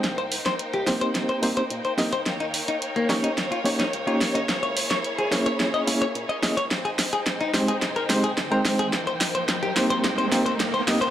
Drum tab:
HH |xxoxxxoxxxoxxxox|xxoxxxoxxxoxxxox|xxoxxxoxxxoxxxox|xxoxxxoxxxoxxxox|
SD |o--o--o-o-----o-|o-----o-o--o--o-|o--o--o-o-----o-|o-o-o-o-o-o-o-o-|

HH |xxoxxxoxxxoxxxox|
SD |o-o-o-o-o-o-o-o-|